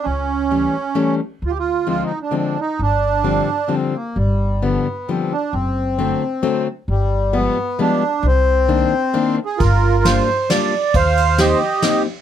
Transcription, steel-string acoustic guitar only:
X:1
M:3/4
L:1/8
Q:1/4=132
K:Cm
V:1 name="Steel-string acoustic guitar" clef=bass
z2 [=E,G,=A,^C] z [E,G,A,C] z | z2 [D,F,A,C] z [D,F,A,C] z | z2 [D,F,G,C] z [D,F,G,C] z | z2 [D,F,G,=B,] z [D,F,G,B,] z |
z2 [D,^F,=A,C] z [D,F,A,C] z | z2 [F,G,A,=B,] z [F,G,A,B,] z | z2 [E,B,CD] z [E,B,CD] z | [K:Gm] z2 [G,B,DF] z [G,B,DF] z |
z2 [B,CEG] z [B,CEG] z |]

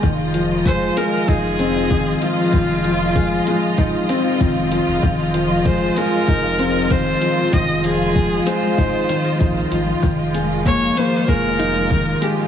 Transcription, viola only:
X:1
M:4/4
L:1/8
Q:1/4=96
K:Fm
V:1 name="Viola"
z2 c B A3 F- | F4- F z3 | z2 c B3 c2 | e A2 c4 z |
z2 d c B3 G |]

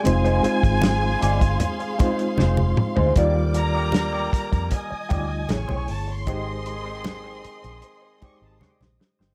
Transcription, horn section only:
X:1
M:4/4
L:1/8
Q:1/4=77
K:Eb
V:1 name="Horn section"
z8 | [D,G,B,]4- [D,G,B,] z [=E,^C^G] z | [E,CA]6- [E,CA] z |]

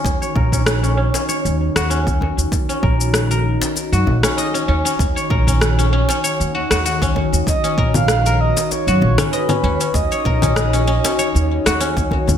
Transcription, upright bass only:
X:1
M:4/4
L:1/16
Q:"Swing 16ths" 1/4=97
K:Ebm
V:1 name="Upright bass" clef=bass
E,, z B,,,4- B,,, z2 E,, z E,,4 E,, | E,, z B,,,4- B,,, z2 G,, B,,, z3 E,, z | E,, z B,,,4- B,,, z2 E,, z E,,4 E,, | E,, z B,,,4- B,,, z2 G,, B,,, z3 E,, z |
E,, z B,,,4- B,,, z2 E,, z E,,4 E,, |]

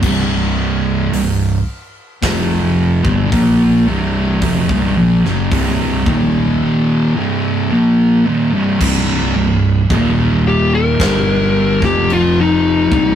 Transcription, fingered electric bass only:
X:1
M:4/4
L:1/16
Q:1/4=55
K:Cm
V:1 name="Fingered electric bass" clef=bass
C,,,4 C,,,2 z2 F,,,3 G,,, B,,,2 C,,,2 | F,,, C,,, B,,, ^F,,, C,,,2 E,,,2 z8 | C,,,2 C,,,2 E,,,4 G,,,3 F,,,4 C,,, |]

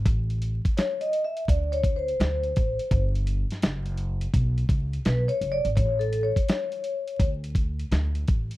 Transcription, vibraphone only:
X:1
M:4/4
L:1/8
Q:"Swing 16ths" 1/4=84
K:A
V:1 name="Vibraphone"
z2 (3c ^d e (3=d c =c- c2 | z6 (3B c d | (3c A c- c2 z4 |]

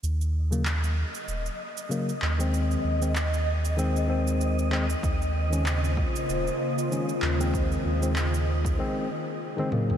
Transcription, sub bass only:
X:1
M:4/4
L:1/8
Q:"Swing 16ths" 1/4=96
K:Abmix
V:1 name="Sub bass" clef=bass
E,,3 z E,,, z2 E,,- | E,, E,,6- E,, | E,,3 z E,,, z2 E,,- | E,, E,,3 z4 |]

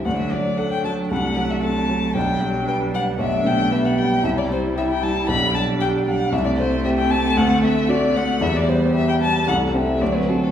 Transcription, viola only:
X:1
M:4/4
L:1/8
Q:1/4=114
K:G
V:1 name="Viola"
D2 D4 C2 | D4 D2 B,2 | E4 D4 | C8 |
B,4 A,2 C2 |]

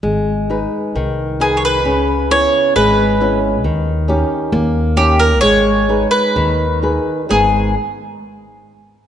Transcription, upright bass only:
X:1
M:2/4
L:1/8
Q:1/4=66
K:G#m
V:1 name="Upright bass" clef=bass
G,,,2 ^B,,,2 | C,,2 G,,,2 | D,,2 D,,2 | G,,,2 D,,2 |
G,,, z3 |]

